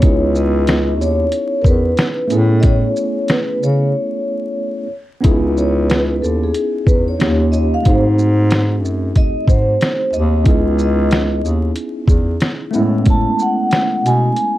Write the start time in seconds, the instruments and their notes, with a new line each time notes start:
Already playing: vibraphone C#5
0.00 bass clarinet C#2, tine electric piano B3 C#4 D#4 E4, kick, closed hi-hat
0.05 tine electric piano G#4
0.35 vibraphone D#5, shaker
0.67 snare, closed hi-hat
1.00 bass clarinet D#2, vibraphone C#5, shaker
1.32 closed hi-hat
1.62 bass clarinet E2, vibraphone A#4, kick, shaker
1.67 vibraphone B4
1.97 snare, closed hi-hat
2.27 bass clarinet A2, tine electric piano A3 B3 C#4, closed hi-hat, shaker
2.32 tine electric piano E4 G#4, vibraphone A4
2.60 vibraphone D#5, kick, closed hi-hat
2.65 vibraphone C#5
2.96 shaker
3.28 vibraphone B4, snare, closed hi-hat
3.61 bass clarinet C#3, vibraphone C#5, shaker
5.21 bass clarinet C#2, tine electric piano B3 C#4 D#4 E4, kick, closed hi-hat
5.26 tine electric piano G#4
5.57 vibraphone C#5, shaker
5.89 vibraphone B4, snare, closed hi-hat
6.22 bass clarinet D#2, vibraphone A4, shaker
6.43 vibraphone G#4
6.54 closed hi-hat
6.87 bass clarinet E2, vibraphone B4, kick, shaker
7.08 vibraphone C#5
7.19 bass clarinet D#2, tine electric piano A#3 C#4 D#4 F4 G4, snare, closed hi-hat
7.52 vibraphone D#5, shaker
7.74 vibraphone F5
7.83 bass clarinet G#2, tine electric piano A3 C4 D#4 F#4, kick, closed hi-hat
7.87 tine electric piano G#4, vibraphone C5
8.19 shaker
8.51 snare, closed hi-hat
8.83 bass clarinet F#2, shaker
9.16 vibraphone D#5, kick, closed hi-hat
9.47 bass clarinet G#2, vibraphone C5, kick, shaker
9.81 snare, closed hi-hat
10.13 bass clarinet D#2, vibraphone D#5, shaker
10.44 bass clarinet C#2, tine electric piano B3 C#4 D#4 E4, kick, closed hi-hat
10.48 tine electric piano G#4
10.78 vibraphone D#5, shaker
11.11 snare, closed hi-hat
11.43 bass clarinet D#2, shaker
11.76 closed hi-hat
12.08 bass clarinet E2, kick, shaker
12.41 snare, closed hi-hat
12.71 bass clarinet A2, tine electric piano A3 B3 C#4, shaker
12.75 tine electric piano G#3 E4
13.05 kick, closed hi-hat
13.10 vibraphone A5
13.39 vibraphone F#5, shaker
13.71 snare, closed hi-hat
14.04 bass clarinet B2, vibraphone G#5, closed hi-hat, shaker
14.36 closed hi-hat